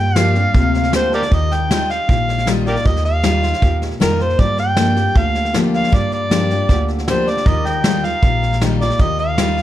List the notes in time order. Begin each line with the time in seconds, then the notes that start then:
Already playing: G2 A#4 D5 G5
0.15 F3 A#3 D4 F4 G4 F5, snare, hi-hat pedal
0.35 D4 G4, snare
0.53 D2 C3 A#3 F4 G4, kick, snare
0.73 F5, snare
0.83 snare
0.91 D3 A#3 F4 G4 G5, snare, hi-hat pedal
0.95 C5
1.11 G4 A#4 D5 A5, snare
1.22 snare
1.29 D#2 D#3 D#4 F4 G4, kick, snare
1.34 D#5
1.51 G5, snare
1.68 D#3 G3 D#4 F4 G4, snare, hi-hat pedal
1.90 D#4 F4 F5, snare
2.07 A#1 A#2 D#4 F4 G4, kick, snare
2.29 snare
2.38 snare
2.45 D#3 G3 D#4 F4 G4, snare, hi-hat pedal
2.66 D#4 F4 G4 A#4 D5, snare
2.76 snare
2.84 D#2 D#3 D#4 F4 G4 D#5, kick, snare
2.96 snare
3.05 F5, snare
3.23 D#3 G3 D#4 F4 G4, snare, hi-hat pedal
3.43 D#4 F4, snare
3.53 snare
3.60 D#2 A#2 D#4 F4 G4, kick, snare
3.82 snare
3.91 snare
3.99 F2 D#3 G3 D#4 F4 G4 A#4, snare, hi-hat pedal
4.19 D#4 F4 C5, snare
4.30 snare
4.38 G2 A#3 F4 G4 D5, kick, snare
4.57 G5, snare
4.75 F3 A#3 D4 F4 G4, snare, hi-hat pedal
4.96 D4 G4, snare
5.15 D2 D3 A#3 F4 G4 F5, kick, snare
5.35 snare
5.45 snare
5.53 F3 A#3 D4 F4 G4, snare, hi-hat pedal
5.74 F5, snare
5.84 snare
5.91 G2 A#3 F4 G4, kick, snare
5.96 D5
6.12 D5, snare
6.29 F3 A#3 D4 F4 G4, snare, hi-hat pedal
6.50 D4 G4, snare
6.68 D2 D3 A#3 F4 G4, kick, snare
6.88 snare
6.98 snare
7.08 F3 A#3 D4 F4 G4 C5, snare, hi-hat pedal
7.27 D4 G4 D5, snare
7.37 snare
7.46 D#2 D#3 D#4 F4 G4 A#4 D5 D#5, kick, snare
7.65 D#5 G5, snare
7.84 D#3 G3 D#4 F4 G4, snare, hi-hat pedal
8.04 D#4 F4 F5, snare
8.22 A#1 A#2 D#4 F4 G4, kick, snare
8.43 snare
8.53 snare
8.61 D#3 G3 D#4 F4 G4, snare, hi-hat pedal
8.81 D#4 F4 D5, snare
8.90 snare
8.98 D#2 D#3 D#4 F4 G4 D#5, kick, snare
9.19 F5, snare
9.37 D#3 G3 D#4 F4 G4, snare, hi-hat pedal
9.57 D#4 F4, snare